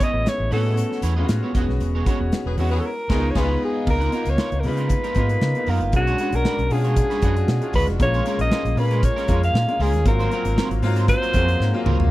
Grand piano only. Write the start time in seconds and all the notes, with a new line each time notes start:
Already playing: G#3 B3 C#4 E4
0.51 A3 B3 C#4 F#4
1.16 G#3 B3 C#4 F4
1.24 F#4
1.55 G#3 B3 C#4 F#4
2.06 G#3 B3 C#4 F#4
2.58 G#3 B3 C#4 E4
3.10 G#3 B3 D#4
3.17 F4
3.35 G#3 B3 D#4
3.43 F4
3.87 A#3 B3 D#4 F4
4.12 A#3 B3 D#4 F4
4.64 G#3 B3 D#4 F4
5.16 A#3 B3 D#4 F4
5.56 A#3 B3 D#4 F4
5.94 G#3 C#4 D4 F#4
6.20 G#3 C#4 D4 F#4
6.71 G#3 C#4 D4 F4
7.22 G#3 C#4 D4 F#4
7.61 G#3 C#4 D4 F4
7.99 G#3 A#3 C#4 F4
8.25 G#3 A#3 C#4 F4
8.76 G#3 A#3 C#4 F4
9.28 G#3 A#3 C#4 F4
9.67 G#3 A#3 C#4 F4
10.05 F#3 A#3 C4 F4
10.30 F#3 A#3 C4 F4
10.82 F#3 A#3 C4 F4
11.34 F#3 A#3 C4 G#4
11.73 F#3 A#3 C4 F4